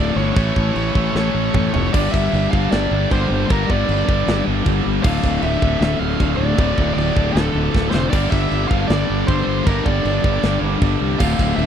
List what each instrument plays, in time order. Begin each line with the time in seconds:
Already playing: fingered electric bass D1, distorted electric guitar D2 A2 D3 A3 F4, lead electric guitar D5
0.00 distorted electric guitar D3
0.16 fingered electric bass G1, lead electric guitar C#5
0.35 fingered electric bass A1, distorted electric guitar A2 E3 A3 C#4 E4 A4, kick, china
0.39 distorted electric guitar A3
0.56 fingered electric bass A1, kick
0.76 fingered electric bass A1, lead electric guitar C#5, china
0.95 fingered electric bass A1, distorted electric guitar A2 E3 A3, kick
1.14 fingered electric bass A1, distorted electric guitar A2 E3 A3 C#4 E4 A4, lead electric guitar C#5, snare
1.35 fingered electric bass A1
1.54 fingered electric bass A1, distorted electric guitar A2 E3 A3, kick, mid tom
1.74 fingered electric bass F1, lead electric guitar C#5, floor tom
1.93 fingered electric bass G1, distorted electric guitar G2 D3 G3 A#3 D4 G4, lead electric guitar D5, kick, crash, china
2.12 fingered electric bass G1, lead electric guitar E5, kick
2.33 fingered electric bass G1, china
2.51 fingered electric bass G1, distorted electric guitar G2 D3 G3, lead electric guitar F5, kick
2.71 fingered electric bass G1, distorted electric guitar G2 D3 G3 A#3 D4 G4, lead electric guitar D5, snare, china
2.91 fingered electric bass G1
3.11 fingered electric bass G1, distorted electric guitar G2 D3 G3, lead electric guitar C5, kick, china
3.30 fingered electric bass G1
3.49 fingered electric bass G1, distorted electric guitar G2 D3 G3 A#3 D4 G4, lead electric guitar A#4, kick, china
3.70 fingered electric bass G1, lead electric guitar D5, kick
3.89 fingered electric bass G1, china
4.08 fingered electric bass G1, distorted electric guitar G2 D3 G3, kick
4.26 fingered electric bass G1, distorted electric guitar G2 D3 G3 A#3 D4 G4, snare, china
4.47 fingered electric bass G1
4.66 fingered electric bass G1, distorted electric guitar G2 D3 G3, kick, china
4.86 fingered electric bass G1
5.04 fingered electric bass D1, distorted electric guitar D2 A2 D3 A3 F4, lead electric guitar F5, kick, crash, china
5.24 fingered electric bass D1, kick
5.42 fingered electric bass D1, lead electric guitar E5, china
5.62 fingered electric bass D1, distorted electric guitar D2 A2 D3, kick
5.80 fingered electric bass D1, distorted electric guitar D2 A2 D3 A3 F4, lead electric guitar E5, snare, china
5.99 fingered electric bass D1, lead electric guitar F5
6.19 fingered electric bass D1, distorted electric guitar D2 A2 D3, kick, china
6.37 fingered electric bass D1, lead electric guitar D5
6.57 fingered electric bass D1, distorted electric guitar D2 A2 D3 A3 F4, kick, china
6.78 fingered electric bass D1, kick
6.94 fingered electric bass D1, lead electric guitar D5
6.98 china
7.16 fingered electric bass D1, distorted electric guitar D2 A2 D3, kick
7.32 fingered electric bass D1, distorted electric guitar D2 A2 D3, lead electric guitar A4
7.36 distorted electric guitar A3 F4, snare, china
7.55 fingered electric bass D1
7.73 fingered electric bass D1, distorted electric guitar D2 A2 D3, kick, snare
7.90 fingered electric bass F1, lead electric guitar C5, snare
8.10 fingered electric bass G1, distorted electric guitar G2 D3 G3 A#3 D4, lead electric guitar D5, kick, crash, china
8.14 distorted electric guitar G3 G4
8.30 fingered electric bass G1, lead electric guitar E5, kick
8.51 fingered electric bass G1, china
8.68 fingered electric bass G1, distorted electric guitar D3 G3, lead electric guitar F5, kick
8.72 distorted electric guitar G2
8.87 fingered electric bass G1, distorted electric guitar G2 D3 G3 A#3 D4 G4, lead electric guitar D5, snare, china
9.10 fingered electric bass G1
9.27 fingered electric bass G1, distorted electric guitar G2 D3 G3, lead electric guitar C5, kick, china
9.47 fingered electric bass G1
9.66 fingered electric bass G1, distorted electric guitar G2 D3 G3 A#3 D4 G4, lead electric guitar A#4, kick, china
9.85 fingered electric bass G1, lead electric guitar D5, kick
10.05 fingered electric bass G1, china
10.24 fingered electric bass G1, distorted electric guitar G2 D3 G3, kick
10.43 fingered electric bass G1, distorted electric guitar G2 D3 G3 A#3 D4 G4, snare, china
10.61 fingered electric bass G1
10.81 fingered electric bass G1, distorted electric guitar G2 D3 G3, kick, china
11.01 fingered electric bass C2
11.19 fingered electric bass D1, distorted electric guitar D2 A2 D3 A3, lead electric guitar F5, kick, china, crash
11.23 distorted electric guitar D3 F4
11.39 fingered electric bass D1, kick
11.56 fingered electric bass D1, lead electric guitar E5, china